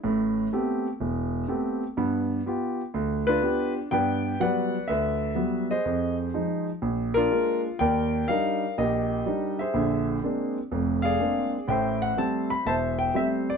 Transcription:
0.04 0.46 A1 medium
0.04 0.46 A2 medium
0.53 0.86 A3 medium
0.53 0.86 B3 medium
0.53 0.87 C4 soft
0.53 0.87 G4 medium
1.00 1.42 E1 medium
1.48 1.83 A3 medium
1.48 1.83 B3 soft
1.48 1.83 C4 medium
1.48 1.83 G4 medium
1.97 2.39 G2 medium
1.97 2.39 B3 medium
2.46 2.80 B3 soft
2.46 2.80 F4 soft
2.46 2.81 G4 medium
2.94 3.36 D2 medium
3.27 3.88 D4 medium
3.27 3.41 F4 medium
3.27 3.72 B4 loud
3.42 3.77 B3 medium
3.42 3.77 F4 soft
3.42 3.77 G4 medium
3.91 4.34 G2 medium
3.91 4.34 B3 medium
3.91 4.41 B4 medium
3.91 4.41 D5 medium
3.91 4.41 G5 loud
4.40 4.74 F#3 medium
4.40 4.74 G3 soft
4.40 4.74 B3 medium
4.40 4.88 B4 medium
4.40 5.34 D5 medium
4.40 4.90 F#5 medium
4.88 5.31 D2 medium
4.88 5.82 B4 medium
4.88 5.65 E5 medium
5.35 5.70 F#3 soft
5.35 5.71 G3 soft
5.35 5.71 B3 medium
5.71 6.63 G#4 medium
5.71 6.63 C5 medium
5.71 6.15 D#5 medium
5.86 6.28 F2 medium
6.34 6.68 F3 medium
6.34 6.68 G#3 soft
6.34 6.69 D#4 medium
6.82 7.25 A#1 medium
7.14 7.31 D4 medium
7.14 7.77 F4 medium
7.14 7.60 A#4 loud
7.32 7.66 G#3 soft
7.32 7.66 A#3 soft
7.32 7.66 D4 medium
7.79 8.22 D#2 medium
7.79 8.28 A#4 medium
7.79 8.28 D5 medium
7.79 8.25 G5 loud
8.28 8.63 G3 medium
8.28 8.63 D4 soft
8.28 8.64 D#4 medium
8.28 8.78 A#4 medium
8.28 9.22 D5 medium
8.28 8.73 F5 medium
8.78 9.20 A#1 medium
8.78 9.72 G4 medium
8.78 9.71 A#4 medium
8.78 9.61 D#5 medium
9.26 9.60 G3 soft
9.26 9.60 D4 soft
9.26 9.61 D#4 medium
9.59 10.53 G#4 medium
9.59 10.53 C5 medium
9.59 10.04 E5 medium
9.74 10.16 A#1 medium
9.74 10.17 D3 medium
10.23 10.57 G#3 medium
10.23 10.57 A#3 soft
10.23 10.58 C4 soft
10.23 10.57 D4 medium
10.72 11.14 F1 medium
10.72 11.14 F2 medium
11.02 11.65 G#4 medium
11.02 11.65 D5 medium
11.02 11.48 F5 medium
11.20 11.54 G#3 medium
11.20 11.54 A#3 soft
11.20 11.54 C4 soft
11.20 11.55 D4 medium
11.68 12.11 A1 medium
11.68 12.10 A2 medium
11.68 12.63 C5 medium
11.68 12.62 E5 medium
11.68 11.99 G5 medium
12.02 12.17 F#5 medium
12.17 12.51 G3 medium
12.17 12.52 A3 soft
12.17 12.52 C4 medium
12.17 12.51 A5 medium
12.50 12.65 B5 loud
12.66 13.08 E1 medium
12.66 13.57 C5 medium
12.66 13.15 E5 medium
12.66 12.74 A5 loud
12.99 13.13 G5 medium
13.14 13.48 G3 medium
13.14 13.49 A3 soft
13.14 13.49 C4 medium
13.14 13.23 E5 medium
13.50 13.57 D5 medium

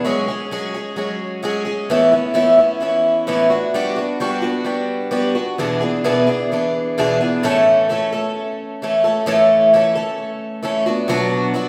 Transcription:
0.04 0.28 F#3 medium
0.04 0.29 G#3 medium
0.04 0.29 C#4 medium
0.04 0.27 G#4 medium
0.28 0.51 G#3 soft
0.28 0.51 C#4 soft
0.28 0.52 G#4 soft
0.51 0.75 F#3 medium
0.51 0.75 G#3 medium
0.51 0.75 C#4 medium
0.51 0.73 G#4 medium
0.74 0.96 G#3 soft
0.74 0.97 C#4 soft
0.74 0.97 G#4 soft
0.96 1.41 F#3 medium
0.96 1.42 G#3 medium
0.96 1.43 C#4 medium
0.96 1.44 G#4 medium
1.43 1.66 F#3 medium
1.43 1.66 G#3 medium
1.43 1.65 C#4 medium
1.43 1.64 G#4 medium
1.65 1.90 G#3 soft
1.65 1.90 C#4 soft
1.65 1.89 G#4 soft
1.90 2.13 A2 medium
1.90 2.13 E3 medium
1.90 2.12 B3 medium
1.90 2.12 C#4 medium
1.90 2.10 E4 medium
2.12 2.34 B3 soft
2.12 2.34 C#4 soft
2.12 2.35 E4 medium
2.34 2.58 A2 medium
2.34 2.59 E3 medium
2.34 2.59 B3 medium
2.34 2.57 C#4 medium
2.34 2.56 E4 medium
2.58 2.80 B3 soft
2.58 2.81 C#4 soft
2.58 2.82 E4 soft
2.80 3.26 E3 medium
2.80 3.28 B3 medium
2.80 3.27 C#4 medium
2.80 3.28 E4 medium
3.27 3.51 A2 medium
3.27 3.51 E3 medium
3.27 3.51 B3 medium
3.27 3.51 C#4 medium
3.27 3.50 E4 medium
3.50 3.73 B3 soft
3.50 3.74 D4 soft
3.50 3.74 F#4 medium
3.74 3.97 G3 medium
3.74 3.97 B3 medium
3.74 3.97 D4 medium
3.74 3.95 F#4 medium
3.96 4.20 B3 soft
3.96 4.20 D4 soft
3.96 4.20 F#4 medium
4.20 4.44 G3 medium
4.20 4.43 B3 medium
4.20 4.43 D4 medium
4.20 4.41 F#4 medium
4.42 4.64 B3 soft
4.42 4.65 D4 soft
4.42 4.65 F#4 medium
4.64 5.10 G3 medium
4.64 5.10 B3 medium
4.64 5.11 D4 medium
4.64 5.11 F#4 medium
5.11 5.35 G3 medium
5.11 5.35 B3 medium
5.11 5.35 D4 medium
5.11 5.34 F#4 medium
5.35 5.58 B3 soft
5.35 5.58 D4 soft
5.35 5.58 F#4 medium
5.58 5.82 E2 medium
5.58 5.82 B2 medium
5.58 5.82 E3 medium
5.58 5.81 B3 medium
5.58 5.81 D4 medium
5.58 5.79 G#4 medium
5.80 6.03 E3 soft
5.80 6.04 B3 soft
5.80 6.04 D4 soft
5.80 6.04 G#4 medium
6.04 6.28 E2 medium
6.04 6.28 B2 medium
6.04 6.28 E3 medium
6.04 6.27 B3 medium
6.04 6.26 D4 medium
6.04 6.26 G#4 medium
6.27 6.50 E3 soft
6.27 6.51 B3 soft
6.27 6.51 D4 soft
6.27 6.50 G#4 medium
6.52 6.97 E3 medium
6.52 6.98 B3 medium
6.52 6.98 D4 medium
6.52 6.98 G#4 medium
6.98 7.21 E2 medium
6.98 7.20 B2 medium
6.98 7.21 E3 medium
6.98 7.21 B3 medium
6.98 7.20 D4 medium
6.98 7.19 G#4 medium
7.21 7.43 E3 soft
7.21 7.44 B3 soft
7.21 7.43 D4 soft
7.21 7.43 G#4 medium
7.43 7.89 A2 medium
7.43 7.88 E3 medium
7.43 7.89 A3 medium
7.43 7.89 C#4 medium
7.43 7.90 A4 loud
7.89 8.12 E3 medium
7.89 8.12 A3 medium
7.89 8.12 C#4 medium
7.89 8.11 A4 medium
8.12 8.82 A3 medium
8.12 8.81 C#4 medium
8.12 8.81 A4 medium
8.82 9.04 E3 medium
8.82 9.05 A3 medium
8.82 9.04 C#4 medium
8.82 9.03 A4 medium
9.04 9.26 A3 medium
9.04 9.26 C#4 medium
9.04 9.26 A4 medium
9.26 9.72 A2 medium
9.26 9.72 E3 medium
9.26 9.72 A3 medium
9.26 9.72 C#4 medium
9.26 9.73 A4 loud
9.73 9.95 E3 medium
9.73 9.96 A3 medium
9.73 9.96 C#4 medium
9.73 9.94 A4 medium
9.95 10.62 A3 soft
9.95 10.63 C#4 medium
9.95 10.64 A4 medium
10.63 10.86 E3 medium
10.63 10.86 A3 medium
10.63 10.86 C#4 medium
10.63 10.86 A4 medium
10.86 11.08 B3 soft
10.86 11.09 D4 medium
10.86 11.09 F#4 medium
11.08 11.54 B2 medium
11.08 11.52 F#3 medium
11.08 11.53 B3 medium
11.08 11.54 D4 medium
11.08 11.55 F#4 loud
11.54 11.69 F#3 medium
11.54 11.69 B3 medium
11.54 11.69 D4 medium
11.54 11.69 F#4 medium

